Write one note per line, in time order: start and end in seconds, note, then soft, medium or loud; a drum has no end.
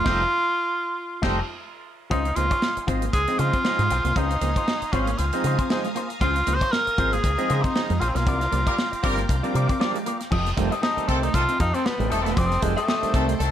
0.00 1.56 F4 loud
0.04 0.24 F1 medium
0.04 0.23 G3 loud
0.04 0.19 A3 medium
0.04 0.24 A3 loud
0.04 0.19 C4 medium
0.04 0.24 C4 loud
0.04 0.23 D#4 loud
0.04 0.24 D#4 loud
0.04 0.19 G4 medium
0.04 0.24 G4 loud
0.04 0.19 C5 medium
0.04 0.24 C5 loud
0.04 kick loud
0.04 snare medium
0.04 crash medium
1.22 1.40 F1 medium
1.22 1.40 G3 medium
1.22 1.35 A3 loud
1.22 1.40 A3 medium
1.22 1.35 C4 medium
1.22 1.40 C4 loud
1.22 1.39 D#4 medium
1.22 1.40 D#4 medium
1.22 1.35 G4 loud
1.22 1.40 G4 medium
1.22 1.40 A4 medium
1.22 1.35 C5 medium
1.22 kick loud
1.22 snare medium
1.22 crash medium
2.10 2.31 C#2 loud
2.10 2.20 F3 loud
2.10 2.20 G#3 medium
2.10 2.20 C4 medium
2.10 2.23 C#4 medium
2.10 2.37 D#4 loud
2.10 2.21 D#4 loud
2.10 2.28 F4 medium
2.10 2.25 G#4 medium
2.10 2.24 C5 medium
2.10 8.23 F5 medium
2.10 8.23 G#5 medium
2.10 5.16 C6 medium
2.10 8.23 D#6 medium
2.10 kick loud
2.10 closed hi-hat medium
2.25 2.31 C4 soft
2.25 2.31 F4 soft
2.25 muted clean electric guitar stroke soft
2.25 closed hi-hat soft
2.36 2.48 C#2 medium
2.36 2.46 F3 medium
2.36 2.46 G#3 medium
2.36 2.48 A#3 medium
2.36 2.46 C4 medium
2.36 2.47 D#4 medium
2.36 2.88 F4 loud
2.36 muted clean electric guitar stroke soft
2.36 closed hi-hat medium
2.50 2.56 C4 soft
2.50 2.57 D#4 soft
2.50 2.61 F4 medium
2.50 2.62 G#4 medium
2.50 2.62 C#5 medium
2.50 kick medium
2.50 closed hi-hat medium
2.62 muted clean electric guitar stroke soft
2.62 snare loud
2.77 muted fingered electric bass stroke soft
2.77 muted clean electric guitar stroke soft
2.77 closed hi-hat soft
2.87 3.08 G#1 medium
2.87 3.05 F3 medium
2.87 3.05 G#3 medium
2.87 3.00 C4 medium
2.87 3.06 C4 medium
2.87 3.06 D#4 medium
2.87 3.05 F4 medium
2.87 3.02 G#4 medium
2.87 3.00 C5 medium
2.87 kick medium
2.87 closed hi-hat medium
3.02 3.12 A#3 medium
3.02 muted clean electric guitar stroke soft
3.02 closed hi-hat medium
3.13 3.24 C#2 medium
3.13 3.20 C4 soft
3.13 3.21 D#4 soft
3.13 3.40 G#4 loud
3.13 muted clean electric guitar stroke soft
3.13 kick loud
3.13 closed hi-hat medium
3.27 3.53 F3 medium
3.27 3.53 G#3 medium
3.27 3.37 C4 medium
3.27 3.53 C4 medium
3.27 3.53 D#4 loud
3.27 muted clean electric guitar stroke soft
3.27 closed hi-hat medium
3.39 3.50 C#3 loud
3.39 4.18 F4 loud
3.39 3.54 F4 medium
3.39 3.53 G#4 medium
3.39 3.52 C5 medium
3.39 muted clean electric guitar stroke soft
3.39 closed hi-hat medium
3.53 3.63 C4 medium
3.53 3.64 F4 soft
3.53 3.65 G#4 medium
3.53 3.65 C5 medium
3.53 kick medium
3.53 closed hi-hat soft
3.65 3.82 F3 medium
3.65 3.83 G#3 medium
3.65 3.83 C4 medium
3.65 3.83 D#4 medium
3.65 muted clean electric guitar stroke soft
3.65 snare loud
3.79 3.88 G#2 medium
3.79 3.88 G#3 medium
3.79 muted clean electric guitar stroke medium
3.79 closed hi-hat soft
3.90 4.02 B1 medium
3.90 3.97 C4 soft
3.90 3.98 D#4 soft
3.90 4.09 F4 medium
3.90 4.06 G#4 medium
3.90 4.05 C5 medium
3.90 muted clean electric guitar stroke soft
3.90 closed hi-hat medium
4.04 4.13 C2 medium
4.04 4.14 A#3 medium
4.04 muted clean electric guitar stroke soft
4.04 closed hi-hat soft
4.16 4.36 C#2 medium
4.16 4.25 F3 loud
4.16 4.25 G#3 medium
4.16 4.26 C4 medium
4.16 4.28 C#4 medium
4.16 4.26 D#4 loud
4.16 4.94 D#4 loud
4.16 4.34 F4 medium
4.16 4.31 G#4 medium
4.16 4.30 C5 medium
4.16 kick loud
4.16 closed hi-hat medium
4.29 4.35 C4 soft
4.29 4.36 D#4 soft
4.29 muted clean electric guitar stroke soft
4.29 closed hi-hat soft
4.41 4.52 C#2 medium
4.41 4.51 F3 medium
4.41 4.51 G#3 medium
4.41 4.54 A#3 medium
4.41 4.51 C4 medium
4.41 4.51 D#4 medium
4.41 muted clean electric guitar stroke soft
4.41 closed hi-hat medium
4.56 4.62 C4 soft
4.56 4.62 D#4 soft
4.56 4.67 F4 medium
4.56 4.68 G#4 medium
4.56 4.68 C5 medium
4.56 kick medium
4.56 closed hi-hat medium
4.68 muted clean electric guitar stroke soft
4.68 snare loud
4.82 muted fingered electric bass stroke soft
4.82 muted clean electric guitar stroke soft
4.82 closed hi-hat soft
4.93 5.13 G#1 medium
4.93 5.11 F3 medium
4.93 5.11 G#3 medium
4.93 5.05 C4 medium
4.93 5.11 C4 medium
4.93 5.20 C#4 medium
4.93 5.11 F4 medium
4.93 5.08 G#4 medium
4.93 5.07 C5 medium
4.93 kick medium
4.93 closed hi-hat medium
5.07 5.16 A#3 medium
5.07 muted clean electric guitar stroke soft
5.07 closed hi-hat medium
5.18 5.30 C#2 medium
5.18 5.26 C4 soft
5.18 5.70 F4 medium
5.18 5.26 F4 soft
5.18 10.27 A#5 medium
5.18 muted clean electric guitar stroke soft
5.18 closed hi-hat medium
5.33 5.58 F3 medium
5.33 5.58 G#3 medium
5.33 5.42 C4 medium
5.33 5.58 C4 medium
5.33 5.58 D#4 loud
5.33 muted clean electric guitar stroke soft
5.33 closed hi-hat soft
5.44 5.55 C#3 loud
5.44 5.59 F4 soft
5.44 5.59 G#4 medium
5.44 5.58 C5 medium
5.44 muted clean electric guitar stroke soft
5.44 closed hi-hat medium
5.58 5.68 C4 medium
5.58 5.70 F4 medium
5.58 5.71 G#4 medium
5.58 5.70 C5 medium
5.58 kick medium
5.58 closed hi-hat soft
5.70 5.88 F3 medium
5.70 5.88 G#3 medium
5.70 5.88 C4 medium
5.70 5.88 D#4 medium
5.70 5.88 F4 medium
5.70 5.86 G#4 medium
5.70 5.84 C5 medium
5.70 muted clean electric guitar stroke soft
5.70 snare loud
5.84 5.93 G#3 medium
5.84 muted clean electric guitar stroke medium
5.84 closed hi-hat soft
5.95 6.07 A#3 medium
5.95 6.03 C4 soft
5.95 6.03 D#4 soft
5.95 6.10 F4 medium
5.95 6.11 G#4 medium
5.95 6.09 C5 medium
5.95 closed hi-hat medium
6.10 muted clean electric guitar stroke soft
6.10 closed hi-hat soft
6.21 6.41 C#2 loud
6.21 6.30 F3 loud
6.21 6.31 G#3 medium
6.21 6.31 C4 medium
6.21 6.33 C#4 medium
6.21 6.56 F4 loud
6.21 6.31 F4 loud
6.21 6.39 F4 medium
6.21 6.36 G#4 medium
6.21 6.35 C5 loud
6.21 kick loud
6.21 closed hi-hat medium
6.35 6.41 C4 soft
6.35 6.41 F4 soft
6.35 muted clean electric guitar stroke soft
6.35 closed hi-hat medium
6.47 6.58 C#2 loud
6.47 6.56 F3 medium
6.47 6.56 G#3 medium
6.47 6.58 A#3 medium
6.47 6.57 C4 medium
6.47 6.57 D#4 medium
6.47 muted clean electric guitar stroke soft
6.47 closed hi-hat medium
6.55 6.74 C5 loud
6.61 6.67 C4 soft
6.61 6.67 D#4 soft
6.61 6.72 F4 medium
6.61 6.72 G#4 medium
6.61 6.73 C#5 medium
6.61 kick medium
6.61 closed hi-hat medium
6.72 7.14 A#4 loud
6.72 muted clean electric guitar stroke medium
6.72 snare loud
6.87 muted fingered electric bass stroke medium
6.87 muted clean electric guitar stroke soft
6.87 closed hi-hat soft
6.98 7.18 G#1 medium
6.98 7.16 F3 medium
6.98 7.16 G#3 medium
6.98 7.10 C4 medium
6.98 7.16 C4 medium
6.98 7.16 F4 medium
6.98 7.13 G#4 medium
6.98 7.11 C5 medium
6.98 kick loud
6.98 closed hi-hat medium
7.13 7.22 A#3 medium
7.13 7.64 G#4 loud
7.13 muted clean electric guitar stroke soft
7.13 closed hi-hat medium
7.23 7.35 C#2 medium
7.23 7.31 C4 soft
7.23 7.31 D#4 soft
7.23 muted clean electric guitar stroke soft
7.23 kick loud
7.23 closed hi-hat medium
7.38 7.63 F3 loud
7.38 7.63 G#3 medium
7.38 7.47 C4 medium
7.38 7.63 C4 medium
7.38 7.63 D#4 loud
7.38 muted clean electric guitar stroke soft
7.38 closed hi-hat soft
7.49 7.61 C#3 medium
7.49 7.64 F4 medium
7.49 7.65 G#4 medium
7.49 7.64 C5 medium
7.49 muted clean electric guitar stroke soft
7.49 closed hi-hat medium
7.62 7.73 C4 medium
7.62 8.01 D#4 medium
7.62 7.75 G#4 soft
7.62 7.75 C5 medium
7.62 kick medium
7.62 closed hi-hat soft
7.67 7.74 F4 medium
7.75 7.93 F3 medium
7.75 7.93 G#3 medium
7.75 7.93 C4 medium
7.75 7.93 D#4 medium
7.75 muted clean electric guitar stroke soft
7.75 snare loud
7.89 7.99 F2 medium
7.89 7.99 G#3 medium
7.89 muted clean electric guitar stroke medium
7.89 closed hi-hat soft
8.00 8.12 A#1 medium
8.00 8.08 C4 soft
8.00 8.08 D#4 soft
8.00 8.11 F4 medium
8.00 8.18 F4 medium
8.00 8.16 G#4 medium
8.00 8.15 C5 medium
8.00 muted clean electric guitar stroke soft
8.00 closed hi-hat medium
8.09 8.18 C4 medium
8.15 8.27 B1 medium
8.15 8.24 A#3 medium
8.15 9.55 F4 medium
8.15 muted clean electric guitar stroke soft
8.15 snare soft
8.15 closed hi-hat soft
8.26 8.46 C2 loud
8.26 8.36 F3 loud
8.26 8.36 G3 medium
8.26 8.36 A#3 medium
8.26 8.38 C4 medium
8.26 8.36 D4 loud
8.26 8.44 F4 medium
8.26 8.42 A#4 loud
8.26 8.40 D5 medium
8.26 10.30 F5 medium
8.26 10.30 G5 medium
8.26 10.30 D6 medium
8.26 kick loud
8.26 closed hi-hat medium
8.41 8.46 A#3 soft
8.41 8.47 D4 soft
8.41 muted clean electric guitar stroke soft
8.41 snare soft
8.41 closed hi-hat medium
8.51 8.63 C2 medium
8.51 8.61 F3 medium
8.51 8.61 G3 medium
8.51 8.63 A#3 medium
8.51 8.61 A#3 medium
8.51 8.62 D4 medium
8.51 muted clean electric guitar stroke soft
8.51 closed hi-hat medium
8.66 8.74 G3 loud
8.66 8.72 A#3 soft
8.66 8.74 A#3 loud
8.66 8.72 D4 soft
8.66 8.74 F4 loud
8.66 8.77 F4 medium
8.66 8.74 A#4 loud
8.66 8.78 A#4 medium
8.66 8.78 D5 medium
8.66 kick loud
8.66 closed hi-hat medium
8.77 muted clean electric guitar stroke soft
8.77 snare loud
8.92 muted clean electric guitar stroke soft
8.92 muted fingered electric bass stroke soft
8.92 closed hi-hat soft
9.02 9.23 G1 medium
9.02 9.21 F3 medium
9.02 9.19 G3 loud
9.02 9.21 G3 medium
9.02 9.19 A#3 loud
9.02 9.21 A#3 medium
9.02 9.15 C4 medium
9.02 9.21 D4 medium
9.02 9.19 F4 loud
9.02 9.21 F4 medium
9.02 9.19 A#4 loud
9.02 9.18 A#4 medium
9.02 9.17 D5 medium
9.02 kick loud
9.02 open hi-hat medium
9.17 9.27 A#3 medium
9.17 muted clean electric guitar stroke medium
9.17 closed hi-hat medium
9.29 9.40 C2 medium
9.29 9.36 A#3 soft
9.29 9.36 D4 soft
9.29 muted clean electric guitar stroke soft
9.29 kick loud
9.29 closed hi-hat medium
9.43 9.68 F3 loud
9.43 9.68 G3 loud
9.43 9.68 A#3 loud
9.43 9.53 C4 medium
9.43 9.68 D4 loud
9.43 muted clean electric guitar stroke soft
9.43 closed hi-hat soft
9.54 9.66 C3 loud
9.54 9.69 F4 medium
9.54 9.69 A#4 medium
9.54 9.68 D5 medium
9.54 muted clean electric guitar stroke soft
9.54 closed hi-hat medium
9.69 9.78 C4 medium
9.69 9.79 F4 medium
9.69 9.80 A#4 medium
9.69 9.80 D5 medium
9.69 kick medium
9.69 closed hi-hat soft
9.80 9.98 F3 medium
9.80 9.98 G3 medium
9.80 9.98 A#3 medium
9.80 9.98 D4 medium
9.80 9.98 F4 medium
9.80 9.94 A#4 loud
9.80 9.93 D5 loud
9.80 muted clean electric guitar stroke soft
9.80 snare loud
9.94 10.04 G#3 medium
9.94 muted clean electric guitar stroke medium
9.94 closed hi-hat soft
10.05 10.13 A#3 soft
10.05 10.18 A#3 medium
10.05 10.20 F4 medium
10.05 10.13 F4 soft
10.05 10.20 A#4 medium
10.05 10.19 D5 medium
10.05 closed hi-hat medium
10.20 muted clean electric guitar stroke medium
10.20 snare soft
10.20 closed hi-hat soft
10.31 10.51 F1 loud
10.31 10.43 F3 medium
10.31 10.49 G4 medium
10.31 10.49 A4 medium
10.31 13.51 D#5 medium
10.31 10.50 D#5 medium
10.31 13.51 G5 medium
10.31 13.51 A5 medium
10.31 13.51 C6 medium
10.31 kick loud
10.31 crash medium
10.45 muted clean electric guitar stroke soft
10.45 snare soft
10.45 closed hi-hat soft
10.56 10.69 F1 loud
10.56 10.75 D#3 loud
10.56 10.75 G3 loud
10.56 10.69 A3 medium
10.56 10.75 A3 loud
10.56 10.75 C4 loud
10.56 muted clean electric guitar stroke soft
10.56 kick medium
10.56 closed hi-hat medium
10.71 10.81 G4 medium
10.71 10.81 A4 medium
10.71 10.82 D#5 medium
10.71 closed hi-hat medium
10.82 10.89 A3 soft
10.82 10.90 C4 soft
10.82 11.10 D#4 medium
10.82 11.06 G4 medium
10.82 11.06 A4 loud
10.82 11.07 D#5 loud
10.82 muted clean electric guitar stroke soft
10.82 snare loud
10.96 11.29 D#3 medium
10.96 11.29 G3 medium
10.96 11.29 A3 medium
10.96 11.29 C4 medium
10.96 muted fingered electric bass stroke soft
10.96 closed hi-hat soft
11.08 11.28 C2 medium
11.08 11.17 D#3 medium
11.08 11.17 A3 loud
11.08 11.17 C4 medium
11.08 11.25 C4 medium
11.08 11.20 C4 medium
11.08 11.17 A4 loud
11.08 kick medium
11.08 closed hi-hat medium
11.22 11.32 A3 medium
11.22 11.36 D#4 loud
11.22 muted clean electric guitar stroke medium
11.22 closed hi-hat medium
11.34 11.45 C2 medium
11.34 11.43 D#3 loud
11.34 11.43 A3 loud
11.34 11.43 C4 medium
11.34 11.60 F4 loud
11.34 11.43 A4 loud
11.34 muted clean electric guitar stroke soft
11.34 kick loud
11.34 closed hi-hat medium
11.48 11.54 A3 soft
11.48 11.57 C4 medium
11.48 11.54 D#4 soft
11.48 closed hi-hat soft
11.59 11.71 F2 loud
11.59 11.76 D#4 loud
11.59 11.74 G4 medium
11.59 11.74 A4 medium
11.59 11.74 F5 medium
11.59 muted clean electric guitar stroke soft
11.59 kick loud
11.59 closed hi-hat medium
11.74 11.81 D#3 medium
11.74 11.81 A3 medium
11.74 11.83 C4 medium
11.74 11.82 C4 medium
11.74 11.88 C4 loud
11.74 11.81 A4 medium
11.74 muted clean electric guitar stroke soft
11.74 closed hi-hat soft
11.86 12.13 B3 medium
11.86 snare loud
11.99 12.08 A1 loud
11.99 12.07 D#3 medium
11.99 12.07 G3 medium
11.99 12.09 G#3 medium
11.99 12.07 A3 medium
11.99 12.07 C4 medium
11.99 muted clean electric guitar stroke soft
11.99 closed hi-hat soft
12.10 12.26 D#1 medium
12.10 12.20 D#3 medium
12.10 12.33 D#3 loud
12.10 12.20 G3 medium
12.10 12.20 A3 medium
12.10 12.33 A3 loud
12.10 12.21 A3 medium
12.10 12.20 C4 loud
12.10 12.33 C4 medium
12.10 12.28 G4 medium
12.10 12.25 A4 medium
12.10 12.33 A4 loud
12.10 12.23 D#5 medium
12.10 muted clean electric guitar stroke soft
12.10 closed hi-hat medium
12.21 12.31 A3 soft
12.21 12.35 A3 medium
12.21 12.39 B3 medium
12.21 12.27 C4 medium
12.21 muted clean electric guitar stroke soft
12.26 12.34 E1 medium
12.26 12.31 C4 soft
12.26 snare soft
12.26 closed hi-hat soft
12.36 12.57 F1 medium
12.36 12.48 F3 medium
12.36 12.65 C4 loud
12.36 12.57 G4 medium
12.36 12.58 A4 medium
12.36 12.58 D#5 medium
12.36 kick loud
12.36 closed hi-hat medium
12.51 snare soft
12.51 closed hi-hat soft
12.61 12.74 F1 loud
12.61 12.80 D#3 loud
12.61 12.80 G3 medium
12.61 12.76 G#3 medium
12.61 12.80 A3 medium
12.61 12.74 A3 medium
12.61 12.80 C4 loud
12.61 muted clean electric guitar stroke soft
12.61 kick medium
12.61 closed hi-hat medium
12.77 13.50 A3 medium
12.77 12.86 G4 medium
12.77 12.87 A4 medium
12.77 12.88 D#5 medium
12.77 closed hi-hat medium
12.87 12.95 A3 soft
12.87 12.95 C4 soft
12.87 13.12 G4 medium
12.87 13.12 A4 loud
12.87 13.13 D#5 loud
12.87 muted clean electric guitar stroke soft
12.87 snare loud
13.02 13.34 D#3 medium
13.02 13.34 G3 medium
13.02 13.34 A3 medium
13.02 13.35 C4 medium
13.02 muted fingered electric bass stroke soft
13.02 closed hi-hat soft
13.14 13.33 C2 medium
13.14 13.23 D#3 medium
13.14 13.23 A3 loud
13.14 13.25 C4 medium
13.14 13.23 C4 medium
13.14 13.23 A4 loud
13.14 muted clean electric guitar stroke soft
13.14 kick loud
13.14 closed hi-hat medium
13.28 13.37 A3 medium
13.28 muted clean electric guitar stroke medium
13.28 closed hi-hat medium
13.39 13.51 C2 medium
13.39 13.48 D#3 medium
13.39 13.48 A3 medium
13.39 13.48 C4 medium
13.39 13.48 A4 loud
13.39 muted clean electric guitar stroke soft
13.39 closed hi-hat medium